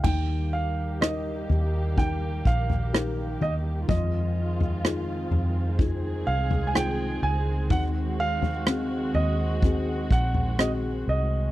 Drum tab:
CC |x---------------|----------------|----------------|
SD |----r-------r---|----r-------r---|----r-------r---|
FT |o-----o-o--o--o-|o--o--o-o--o----|o--o--o-o--o----|
BD |o-------o-o-----|o-------o-------|o-------o-o-----|